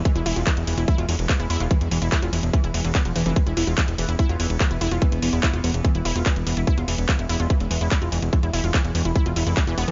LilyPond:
<<
  \new Staff \with { instrumentName = "Synth arpeggio sound" } { \time 4/4 \key e \major \tempo 4 = 145 e16 e'16 e'16 f'16 e16 r16 e16 e'16 e'16 f'16 e16 r16 e16 e'16 e'16 f'16 | e16 r16 e16 e'16 e'16 f'16 e16 r16 e16 e'16 e16 e16 b16 f16 e16 e16 | e16 e'16 e'16 f'16 e16 r16 e16 e'16 e'16 f'16 e16 r16 e16 e'16 e'16 f'16 | e16 r16 e16 e'16 e'16 f'16 e16 r16 e16 e'16 e'16 f'16 e16 r16 e16 e'16 |
e'16 f'16 e16 r16 e16 e'16 e'16 f'16 e16 r16 e16 e'16 e'16 f'16 e16 r16 | e16 e'16 e'16 f'16 e16 r16 e16 e'16 e'16 f'16 e'16 e'16 e16 e16 b16 d16 | }
  \new Staff \with { instrumentName = "Synth drone" } { \clef bass \time 4/4 \key e \major <e gis>1~ | <e gis>1 | <e b>1~ | <e b>1 |
gis1~ | gis1 | }
  \new Staff \with { instrumentName = "Analog synth bass" } { \clef bass \time 4/4 \key e \major r16 e,,16 e,,16 e,,16 r16 e,,16 e,,16 e,,16 r16 e,,16 e,,16 e,,16 r16 e,,16 e,,16 e,,16 | r16 e,,16 e,,16 e,,16 r16 e,,16 e,,16 e,,16 r16 e,,16 e,,16 e,,16 r16 e,,16 e,,16 f,,16 | r16 e,,16 e,,16 e,,16 r16 e,,16 e,,16 e,,16 r16 e,,16 e,,16 e,,16 r16 e,,16 e,,16 e,,16 | r16 e,,16 e,,16 e,,16 r16 e,,16 e,,16 e,,16 r16 e,,16 e,,16 e,,16 r16 e,,16 e,,16 e,,16 |
r16 e,,16 e,,16 e,,16 r16 e,,16 e,,16 e,,16 r16 e,,16 e,,16 e,,16 r16 e,,16 e,,16 e,,16 | r16 e,,16 e,,16 e,,16 r16 e,,16 e,,16 e,,16 r16 e,,16 e,,16 f,,16 r16 e,,16 e,,16 e,16 | }
  \new DrumStaff \with { instrumentName = "Drums" } \drummode { \time 4/4 <hh bd>16 hh16 <hho cymr>16 hh16 <hc hh bd>16 hh16 <hho cymr>16 hh16 <hh bd>16 hh16 <hho cymr>16 hh16 <hc hh bd>16 hh16 <hho cymr>16 hh16 | <hh bd>16 hh16 <hho cymr>16 hh16 <hc hh bd>16 hh16 <hho cymr>16 hh16 <hh bd>16 hh16 <hho cymr>16 hh16 <hc hh bd>16 hh16 <hho cymr>16 hh16 | <hh bd>16 hh16 <hho cymr>16 hh16 <hc hh bd>16 hh16 <hho cymr>16 hh16 <hh bd>16 hh16 <hho cymr>16 hh16 <hc hh bd>16 hh16 <hho cymr>16 hh16 | <hh bd>16 hh16 <hho cymr>16 hh16 <hc hh bd>16 hh16 <hho cymr>16 hh16 <hh bd>16 hh16 <hho cymr>16 hh16 <hc hh bd>16 hh16 <hho cymr>16 hh16 |
<hh bd>16 hh16 <hho cymr>16 hh16 <hc hh bd>16 hh16 <hho cymr>16 hh16 <hh bd>16 hh16 <hho cymr>16 hh16 <hc hh bd>16 hh16 <hho cymr>16 hh16 | <hh bd>16 hh16 <hho cymr>16 hh16 <hc hh bd>16 hh16 <hho cymr>16 hh16 <hh bd>16 hh16 <hho cymr>16 hh16 <hc hh bd>16 hh16 <hho cymr>16 hh16 | }
>>